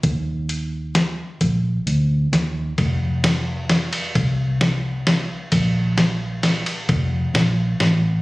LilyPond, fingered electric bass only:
\new Staff \with { instrumentName = "Fingered electric bass" } { \clef bass \time 3/4 \key f \mixolydian \tempo 4 = 131 ees,2. | bes,,4 d,4 ees,4 | f,,2. | c,2. |
bes,,2. | f,,4 bes,,4 a,,4 | }